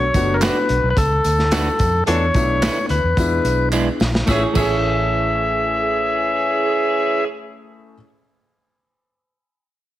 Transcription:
0.00 0.37 C#5 loud
0.14 0.47 F#1 medium
0.14 0.73 A3 medium
0.14 0.73 B3 medium
0.14 0.73 D4 medium
0.14 0.74 F#4 medium
0.14 kick medium
0.14 closed hi-hat medium
0.14 tambourine medium
0.34 0.42 A#4 medium
0.42 0.57 A3 medium
0.42 0.57 D4 loud
0.42 0.57 F#4 medium
0.42 0.89 B4 medium
0.42 0.57 B4 medium
0.42 snare loud
0.42 clap loud
0.42 closed hi-hat medium
0.42 tambourine loud
0.69 0.80 B1 medium
0.69 closed hi-hat medium
0.84 0.94 B1 loud
0.90 0.97 B4 medium
0.97 1.19 C#2 medium
0.97 2.04 A4 medium
0.97 kick medium
0.97 closed hi-hat medium
0.97 tambourine medium
1.24 1.68 D2 medium
1.24 closed hi-hat medium
1.24 tambourine medium
1.39 snare soft
1.51 1.67 A3 medium
1.51 1.67 D4 medium
1.51 1.67 F#4 medium
1.51 1.68 B4 loud
1.51 snare loud
1.51 clap medium
1.51 closed hi-hat medium
1.51 tambourine medium
1.79 2.01 F2 loud
1.79 kick medium
1.79 closed hi-hat medium
1.79 tambourine medium
2.07 2.29 E2 medium
2.07 2.25 E3 medium
2.07 2.22 A3 medium
2.07 2.22 B3 medium
2.07 2.25 D4 loud
2.07 2.22 D4 medium
2.07 2.22 E4 medium
2.07 2.25 A4 loud
2.07 2.86 C#5 loud
2.07 closed hi-hat loud
2.07 tambourine soft
2.34 2.67 B1 medium
2.34 2.93 A3 medium
2.34 2.93 B3 medium
2.34 2.94 D4 medium
2.34 2.94 E4 medium
2.34 kick medium
2.34 closed hi-hat medium
2.34 tambourine medium
2.62 2.77 A3 medium
2.62 2.77 D4 medium
2.62 2.78 E4 medium
2.62 2.78 B4 medium
2.62 snare loud
2.62 clap loud
2.62 closed hi-hat medium
2.62 tambourine medium
2.89 3.01 D2 medium
2.89 3.69 B4 medium
2.89 closed hi-hat medium
2.89 tambourine soft
3.04 3.15 E2 medium
3.17 3.39 E2 medium
3.17 4.06 G#3 medium
3.17 4.06 B3 medium
3.17 4.06 D4 medium
3.17 4.06 E4 medium
3.17 kick medium
3.17 closed hi-hat medium
3.17 tambourine medium
3.44 3.88 B1 medium
3.44 closed hi-hat medium
3.44 tambourine medium
3.72 3.88 G#3 medium
3.72 3.88 D4 medium
3.72 3.88 E4 medium
3.72 3.88 B4 medium
3.72 clap medium
3.72 tambourine medium
4.00 4.22 A#1 medium
4.00 snare medium
4.00 tambourine medium
4.15 snare medium
4.26 4.43 A1 medium
4.26 4.43 E3 medium
4.26 4.42 A3 medium
4.26 4.53 A3 medium
4.26 4.43 C#4 medium
4.26 4.55 E4 medium
4.26 4.43 G#4 loud
4.26 4.44 E5 medium
4.26 kick medium
4.26 snare medium
4.26 tambourine medium
4.30 4.44 E4 medium
4.30 4.57 G#4 medium
4.30 4.45 G#4 medium
4.30 4.59 C#5 medium
4.53 7.94 A1 loud
4.53 7.24 E3 medium
4.53 7.93 A3 medium
4.53 8.04 A3 medium
4.53 7.94 C#4 medium
4.53 7.24 C#4 medium
4.53 8.06 E4 medium
4.53 7.24 G#4 medium
4.53 7.25 E5 medium
4.53 kick loud
4.53 crash medium
4.53 tambourine medium
4.57 7.95 E4 medium
4.57 8.07 G#4 medium
4.57 7.96 G#4 loud
4.57 8.09 C#5 medium

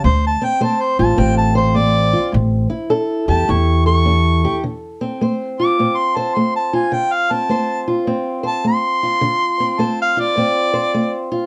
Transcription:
0.04 0.35 D2 medium
0.04 0.58 D3 medium
0.04 0.23 C5 medium
0.27 0.46 A5 loud
0.42 1.17 C4 medium
0.42 0.62 G5 loud
0.61 1.15 A3 medium
0.61 1.55 C5 medium
0.61 0.83 A5 medium
0.82 0.98 C5 loud
0.99 1.16 A1 medium
0.99 2.12 F4 medium
0.99 1.21 A5 medium
1.16 2.13 A1 loud
1.16 1.71 A2 medium
1.16 2.69 C4 medium
1.16 1.37 G5 medium
1.38 1.56 A5 loud
1.55 2.90 C5 medium
1.55 1.78 C5 medium
1.75 2.29 A3 medium
1.75 2.32 D5 loud
2.13 2.32 F4 medium
2.32 2.65 A1 loud
2.32 2.87 A2 medium
2.70 3.48 E4 medium
2.90 3.44 C#4 medium
2.90 3.85 A4 medium
3.28 3.45 E2 medium
3.28 4.43 G4 medium
3.28 3.52 A5 medium
3.48 4.44 E2 loud
3.48 4.02 A2 medium
3.48 4.62 E4 medium
3.48 3.86 C#6 medium
3.86 5.22 A4 medium
3.86 4.62 C#6 loud
4.06 4.60 C#4 medium
4.45 4.62 G4 medium
4.64 5.17 D3 medium
5.01 5.79 C4 medium
5.21 5.75 A3 medium
5.21 6.16 C5 medium
5.60 6.73 F4 medium
5.60 5.99 D6 loud
5.79 6.32 A2 medium
5.79 7.30 C4 medium
5.97 6.18 C6 medium
6.17 6.95 C5 medium
6.17 6.36 A5 medium
6.35 6.90 A3 medium
6.35 6.54 C6 medium
6.56 6.76 A5 medium
6.73 7.87 F4 medium
6.73 6.94 G#5 medium
6.92 7.46 D3 medium
6.92 7.14 G5 medium
7.13 7.33 F5 loud
7.31 8.07 C4 medium
7.31 7.87 A5 loud
7.49 8.03 A3 medium
7.49 8.43 C5 medium
7.88 9.03 F4 medium
8.07 8.61 A2 medium
8.07 9.60 C4 medium
8.43 9.24 C5 medium
8.43 8.65 A5 loud
8.64 9.18 A3 medium
8.64 9.82 C6 loud
9.03 10.17 F4 medium
9.21 9.75 D3 medium
9.60 10.37 C4 medium
9.79 10.32 A3 medium
9.79 10.72 C5 medium
9.79 9.99 A5 medium
10.02 10.21 F5 medium
10.17 11.31 F4 medium
10.17 11.29 D5 loud
10.36 10.90 A2 medium
10.36 11.46 C4 medium
10.73 11.46 C5 medium
10.94 11.46 A3 medium
11.32 11.46 F4 medium

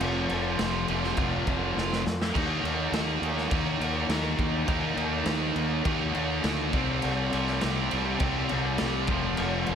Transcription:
0.00 0.27 F1 loud
0.00 1.15 F2 medium
0.00 1.16 C3 medium
0.00 1.17 F3 loud
0.00 crash medium
0.29 0.57 F1 medium
0.29 crash medium
0.59 0.86 F1 loud
0.59 snare loud
0.59 crash medium
0.88 1.16 F1 medium
0.88 2.05 F2 medium
0.88 2.04 C3 medium
0.88 2.04 F3 medium
0.88 crash medium
1.04 snare soft
1.16 1.44 F1 medium
1.16 1.44 F2 medium
1.16 1.46 C3 medium
1.16 1.45 F3 medium
1.16 kick loud
1.16 crash medium
1.46 1.74 F1 medium
1.46 2.05 F2 medium
1.46 2.04 C3 medium
1.46 2.03 F3 medium
1.46 kick medium
1.46 crash medium
1.77 2.03 F1 medium
1.77 snare medium
1.93 snare medium
2.06 2.33 F2 medium
2.06 snare loud
2.22 snare loud
2.35 2.62 D#2 loud
2.35 3.79 D#3 medium
2.35 3.80 A#3 loud
2.35 3.79 D#4 loud
2.35 kick loud
2.35 crash loud
2.63 2.91 D#2 medium
2.63 crash medium
2.92 3.19 D#2 medium
2.92 snare loud
2.92 crash medium
3.22 3.49 D#2 medium
3.22 crash medium
3.38 snare soft
3.50 3.79 D#2 loud
3.50 4.66 D#3 medium
3.50 4.67 A#3 medium
3.50 4.71 D#4 medium
3.50 kick loud
3.50 crash medium
3.79 4.07 D#2 medium
3.79 4.07 D#3 medium
3.79 4.09 A#3 medium
3.79 4.11 D#4 medium
3.79 crash medium
4.09 4.36 D#2 medium
4.09 4.64 D#3 medium
4.09 4.66 A#3 medium
4.09 4.68 D#4 medium
4.09 snare loud
4.09 crash medium
4.38 4.66 D#2 medium
4.38 kick medium
4.38 crash medium
4.65 4.95 D#2 loud
4.65 6.12 D#3 medium
4.65 6.13 A#3 loud
4.65 6.12 D#4 loud
4.65 kick loud
4.65 crash medium
4.97 5.24 D#2 medium
4.97 crash medium
5.25 5.53 D#2 medium
5.25 snare loud
5.25 crash medium
5.55 5.83 D#2 loud
5.55 crash medium
5.84 6.12 D#2 loud
5.84 6.71 D#3 medium
5.84 6.72 A#3 medium
5.84 6.73 D#4 loud
5.84 kick loud
5.84 crash medium
6.13 6.42 D#2 medium
6.13 6.42 D#3 medium
6.13 6.43 A#3 medium
6.13 6.42 D#4 medium
6.13 crash medium
6.43 6.71 D2 medium
6.43 6.71 D#3 medium
6.43 6.72 A#3 medium
6.43 6.73 D#4 loud
6.43 snare loud
6.43 crash medium
6.73 7.00 C2 medium
6.73 8.18 C3 medium
6.73 8.19 G3 medium
6.73 8.23 C4 loud
6.73 kick loud
6.73 crash medium
7.02 7.31 C2 loud
7.02 crash medium
7.33 7.60 C2 medium
7.33 crash medium
7.47 snare soft
7.61 7.90 C2 medium
7.61 snare loud
7.61 crash medium
7.90 8.19 C2 loud
7.90 9.07 G3 medium
7.90 9.06 C4 medium
7.90 crash medium
7.95 9.08 C3 medium
8.20 8.47 C2 loud
8.20 8.48 C3 medium
8.20 8.48 G3 medium
8.20 8.48 C4 medium
8.20 kick loud
8.20 crash medium
8.49 8.78 C2 medium
8.49 9.08 C3 medium
8.49 9.07 G3 medium
8.49 9.06 C4 medium
8.49 crash medium
8.78 9.07 C2 loud
8.78 snare loud
8.78 crash medium
9.07 9.35 F1 loud
9.07 9.75 F2 medium
9.07 9.75 C3 medium
9.07 kick loud
9.07 crash medium
9.11 9.75 F3 loud
9.37 9.65 F1 loud
9.37 crash medium
9.66 9.75 F1 medium
9.66 crash medium

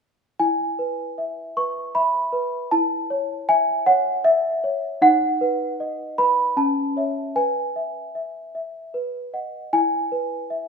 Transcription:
0.40 2.68 E4 soft
0.40 1.56 G#5 medium
0.79 1.41 B4 soft
1.18 1.80 E5 soft
1.57 2.18 B4 soft
1.57 1.95 C#6 medium
1.95 2.56 E5 soft
1.95 2.72 B5 medium
2.33 2.71 B4 soft
2.71 4.98 E4 medium
2.71 3.48 A5 medium
3.10 3.71 C#5 soft
3.49 4.10 E5 soft
3.49 3.87 G#5 medium
3.86 4.48 C#5 soft
3.86 4.25 F#5 medium
4.25 5.02 E5 medium
4.64 5.02 C#5 soft
5.02 6.53 D#4 medium
5.02 6.18 F#5 medium
5.41 6.03 B4 soft
5.80 6.42 D#5 soft
6.18 6.57 B4 soft
6.18 6.57 B5 medium
6.57 7.33 C#4 soft
6.57 7.35 A5 medium
6.96 7.32 C#5 soft
6.96 7.32 E5 soft
7.36 8.90 B4 soft
7.36 8.94 G#5 medium
7.76 8.14 E5 soft
8.15 8.54 E5 soft
8.55 8.94 E5 soft
8.94 9.70 B4 soft
9.34 9.69 D#5 soft
9.34 9.69 F#5 soft
9.73 10.68 E4 soft
9.73 10.68 G#5 medium
10.12 10.68 B4 soft
10.50 10.68 E5 soft

